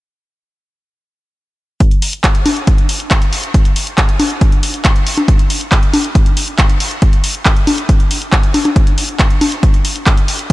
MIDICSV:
0, 0, Header, 1, 2, 480
1, 0, Start_track
1, 0, Tempo, 434783
1, 1993, Time_signature, 4, 2, 24, 8
1, 11621, End_track
2, 0, Start_track
2, 0, Title_t, "Drums"
2, 1992, Note_on_c, 9, 36, 112
2, 1992, Note_on_c, 9, 42, 86
2, 2102, Note_off_c, 9, 36, 0
2, 2102, Note_off_c, 9, 42, 0
2, 2112, Note_on_c, 9, 42, 39
2, 2222, Note_off_c, 9, 42, 0
2, 2232, Note_on_c, 9, 46, 101
2, 2342, Note_off_c, 9, 46, 0
2, 2352, Note_on_c, 9, 42, 39
2, 2463, Note_off_c, 9, 42, 0
2, 2472, Note_on_c, 9, 36, 108
2, 2472, Note_on_c, 9, 39, 117
2, 2472, Note_on_c, 9, 42, 92
2, 2582, Note_off_c, 9, 36, 0
2, 2583, Note_off_c, 9, 39, 0
2, 2583, Note_off_c, 9, 42, 0
2, 2592, Note_on_c, 9, 42, 40
2, 2703, Note_off_c, 9, 42, 0
2, 2712, Note_on_c, 9, 46, 100
2, 2712, Note_on_c, 9, 63, 73
2, 2822, Note_off_c, 9, 46, 0
2, 2822, Note_off_c, 9, 63, 0
2, 2832, Note_on_c, 9, 42, 39
2, 2942, Note_off_c, 9, 42, 0
2, 2951, Note_on_c, 9, 42, 90
2, 2952, Note_on_c, 9, 36, 118
2, 3061, Note_off_c, 9, 42, 0
2, 3062, Note_off_c, 9, 36, 0
2, 3071, Note_on_c, 9, 42, 40
2, 3182, Note_off_c, 9, 42, 0
2, 3191, Note_on_c, 9, 46, 102
2, 3301, Note_off_c, 9, 46, 0
2, 3312, Note_on_c, 9, 42, 39
2, 3422, Note_off_c, 9, 42, 0
2, 3432, Note_on_c, 9, 36, 113
2, 3432, Note_on_c, 9, 39, 115
2, 3432, Note_on_c, 9, 42, 90
2, 3542, Note_off_c, 9, 36, 0
2, 3542, Note_off_c, 9, 39, 0
2, 3542, Note_off_c, 9, 42, 0
2, 3552, Note_on_c, 9, 42, 39
2, 3662, Note_off_c, 9, 42, 0
2, 3672, Note_on_c, 9, 46, 100
2, 3782, Note_off_c, 9, 46, 0
2, 3792, Note_on_c, 9, 42, 39
2, 3902, Note_off_c, 9, 42, 0
2, 3912, Note_on_c, 9, 36, 121
2, 3912, Note_on_c, 9, 42, 88
2, 4022, Note_off_c, 9, 36, 0
2, 4022, Note_off_c, 9, 42, 0
2, 4032, Note_on_c, 9, 42, 39
2, 4142, Note_off_c, 9, 42, 0
2, 4151, Note_on_c, 9, 46, 107
2, 4262, Note_off_c, 9, 46, 0
2, 4272, Note_on_c, 9, 42, 39
2, 4383, Note_off_c, 9, 42, 0
2, 4392, Note_on_c, 9, 36, 115
2, 4392, Note_on_c, 9, 39, 119
2, 4392, Note_on_c, 9, 42, 89
2, 4502, Note_off_c, 9, 36, 0
2, 4503, Note_off_c, 9, 39, 0
2, 4503, Note_off_c, 9, 42, 0
2, 4512, Note_on_c, 9, 42, 38
2, 4623, Note_off_c, 9, 42, 0
2, 4632, Note_on_c, 9, 46, 102
2, 4632, Note_on_c, 9, 63, 71
2, 4742, Note_off_c, 9, 46, 0
2, 4742, Note_off_c, 9, 63, 0
2, 4752, Note_on_c, 9, 42, 37
2, 4863, Note_off_c, 9, 42, 0
2, 4872, Note_on_c, 9, 36, 120
2, 4872, Note_on_c, 9, 42, 89
2, 4982, Note_off_c, 9, 36, 0
2, 4982, Note_off_c, 9, 42, 0
2, 4992, Note_on_c, 9, 42, 38
2, 5103, Note_off_c, 9, 42, 0
2, 5112, Note_on_c, 9, 46, 109
2, 5222, Note_off_c, 9, 46, 0
2, 5232, Note_on_c, 9, 42, 39
2, 5342, Note_off_c, 9, 42, 0
2, 5352, Note_on_c, 9, 36, 119
2, 5352, Note_on_c, 9, 39, 118
2, 5352, Note_on_c, 9, 42, 90
2, 5462, Note_off_c, 9, 36, 0
2, 5462, Note_off_c, 9, 39, 0
2, 5462, Note_off_c, 9, 42, 0
2, 5473, Note_on_c, 9, 42, 38
2, 5583, Note_off_c, 9, 42, 0
2, 5592, Note_on_c, 9, 46, 108
2, 5703, Note_off_c, 9, 46, 0
2, 5713, Note_on_c, 9, 42, 39
2, 5713, Note_on_c, 9, 63, 55
2, 5823, Note_off_c, 9, 42, 0
2, 5823, Note_off_c, 9, 63, 0
2, 5832, Note_on_c, 9, 36, 122
2, 5833, Note_on_c, 9, 42, 86
2, 5942, Note_off_c, 9, 36, 0
2, 5943, Note_off_c, 9, 42, 0
2, 5953, Note_on_c, 9, 42, 38
2, 6064, Note_off_c, 9, 42, 0
2, 6073, Note_on_c, 9, 46, 105
2, 6183, Note_off_c, 9, 46, 0
2, 6193, Note_on_c, 9, 42, 37
2, 6304, Note_off_c, 9, 42, 0
2, 6312, Note_on_c, 9, 36, 118
2, 6313, Note_on_c, 9, 39, 114
2, 6313, Note_on_c, 9, 42, 89
2, 6422, Note_off_c, 9, 36, 0
2, 6423, Note_off_c, 9, 39, 0
2, 6423, Note_off_c, 9, 42, 0
2, 6433, Note_on_c, 9, 42, 36
2, 6543, Note_off_c, 9, 42, 0
2, 6552, Note_on_c, 9, 46, 104
2, 6552, Note_on_c, 9, 63, 72
2, 6663, Note_off_c, 9, 46, 0
2, 6663, Note_off_c, 9, 63, 0
2, 6673, Note_on_c, 9, 42, 37
2, 6783, Note_off_c, 9, 42, 0
2, 6792, Note_on_c, 9, 36, 120
2, 6792, Note_on_c, 9, 42, 86
2, 6902, Note_off_c, 9, 36, 0
2, 6903, Note_off_c, 9, 42, 0
2, 6911, Note_on_c, 9, 42, 37
2, 7022, Note_off_c, 9, 42, 0
2, 7031, Note_on_c, 9, 46, 107
2, 7141, Note_off_c, 9, 46, 0
2, 7151, Note_on_c, 9, 42, 38
2, 7262, Note_off_c, 9, 42, 0
2, 7271, Note_on_c, 9, 36, 119
2, 7271, Note_on_c, 9, 39, 114
2, 7271, Note_on_c, 9, 42, 89
2, 7381, Note_off_c, 9, 39, 0
2, 7381, Note_off_c, 9, 42, 0
2, 7382, Note_off_c, 9, 36, 0
2, 7391, Note_on_c, 9, 42, 38
2, 7501, Note_off_c, 9, 42, 0
2, 7510, Note_on_c, 9, 46, 108
2, 7621, Note_off_c, 9, 46, 0
2, 7630, Note_on_c, 9, 42, 37
2, 7740, Note_off_c, 9, 42, 0
2, 7750, Note_on_c, 9, 42, 85
2, 7751, Note_on_c, 9, 36, 120
2, 7860, Note_off_c, 9, 42, 0
2, 7861, Note_off_c, 9, 36, 0
2, 7871, Note_on_c, 9, 42, 37
2, 7981, Note_off_c, 9, 42, 0
2, 7990, Note_on_c, 9, 46, 109
2, 8100, Note_off_c, 9, 46, 0
2, 8111, Note_on_c, 9, 42, 36
2, 8221, Note_off_c, 9, 42, 0
2, 8230, Note_on_c, 9, 39, 116
2, 8230, Note_on_c, 9, 42, 86
2, 8231, Note_on_c, 9, 36, 117
2, 8341, Note_off_c, 9, 36, 0
2, 8341, Note_off_c, 9, 39, 0
2, 8341, Note_off_c, 9, 42, 0
2, 8351, Note_on_c, 9, 42, 37
2, 8461, Note_off_c, 9, 42, 0
2, 8470, Note_on_c, 9, 46, 104
2, 8470, Note_on_c, 9, 63, 73
2, 8581, Note_off_c, 9, 46, 0
2, 8581, Note_off_c, 9, 63, 0
2, 8591, Note_on_c, 9, 42, 37
2, 8701, Note_off_c, 9, 42, 0
2, 8711, Note_on_c, 9, 36, 117
2, 8711, Note_on_c, 9, 42, 86
2, 8821, Note_off_c, 9, 36, 0
2, 8821, Note_off_c, 9, 42, 0
2, 8831, Note_on_c, 9, 42, 36
2, 8941, Note_off_c, 9, 42, 0
2, 8951, Note_on_c, 9, 46, 108
2, 9061, Note_off_c, 9, 46, 0
2, 9071, Note_on_c, 9, 42, 36
2, 9181, Note_off_c, 9, 42, 0
2, 9191, Note_on_c, 9, 36, 119
2, 9191, Note_on_c, 9, 39, 115
2, 9191, Note_on_c, 9, 42, 83
2, 9301, Note_off_c, 9, 36, 0
2, 9302, Note_off_c, 9, 39, 0
2, 9302, Note_off_c, 9, 42, 0
2, 9311, Note_on_c, 9, 42, 36
2, 9421, Note_off_c, 9, 42, 0
2, 9431, Note_on_c, 9, 46, 104
2, 9431, Note_on_c, 9, 63, 58
2, 9541, Note_off_c, 9, 46, 0
2, 9541, Note_off_c, 9, 63, 0
2, 9551, Note_on_c, 9, 42, 36
2, 9551, Note_on_c, 9, 63, 55
2, 9662, Note_off_c, 9, 42, 0
2, 9662, Note_off_c, 9, 63, 0
2, 9671, Note_on_c, 9, 36, 114
2, 9672, Note_on_c, 9, 42, 84
2, 9781, Note_off_c, 9, 36, 0
2, 9782, Note_off_c, 9, 42, 0
2, 9792, Note_on_c, 9, 42, 38
2, 9902, Note_off_c, 9, 42, 0
2, 9911, Note_on_c, 9, 46, 102
2, 10022, Note_off_c, 9, 46, 0
2, 10032, Note_on_c, 9, 42, 37
2, 10142, Note_off_c, 9, 42, 0
2, 10151, Note_on_c, 9, 36, 113
2, 10151, Note_on_c, 9, 39, 107
2, 10151, Note_on_c, 9, 42, 86
2, 10262, Note_off_c, 9, 36, 0
2, 10262, Note_off_c, 9, 39, 0
2, 10262, Note_off_c, 9, 42, 0
2, 10272, Note_on_c, 9, 42, 37
2, 10382, Note_off_c, 9, 42, 0
2, 10391, Note_on_c, 9, 46, 101
2, 10391, Note_on_c, 9, 63, 73
2, 10502, Note_off_c, 9, 46, 0
2, 10502, Note_off_c, 9, 63, 0
2, 10511, Note_on_c, 9, 42, 36
2, 10622, Note_off_c, 9, 42, 0
2, 10632, Note_on_c, 9, 36, 117
2, 10632, Note_on_c, 9, 42, 82
2, 10742, Note_off_c, 9, 36, 0
2, 10742, Note_off_c, 9, 42, 0
2, 10752, Note_on_c, 9, 42, 37
2, 10862, Note_off_c, 9, 42, 0
2, 10871, Note_on_c, 9, 46, 106
2, 10981, Note_off_c, 9, 46, 0
2, 10991, Note_on_c, 9, 42, 38
2, 11102, Note_off_c, 9, 42, 0
2, 11112, Note_on_c, 9, 36, 117
2, 11112, Note_on_c, 9, 39, 106
2, 11112, Note_on_c, 9, 42, 86
2, 11222, Note_off_c, 9, 36, 0
2, 11222, Note_off_c, 9, 39, 0
2, 11222, Note_off_c, 9, 42, 0
2, 11232, Note_on_c, 9, 42, 38
2, 11342, Note_off_c, 9, 42, 0
2, 11352, Note_on_c, 9, 46, 101
2, 11462, Note_off_c, 9, 46, 0
2, 11472, Note_on_c, 9, 42, 36
2, 11582, Note_off_c, 9, 42, 0
2, 11621, End_track
0, 0, End_of_file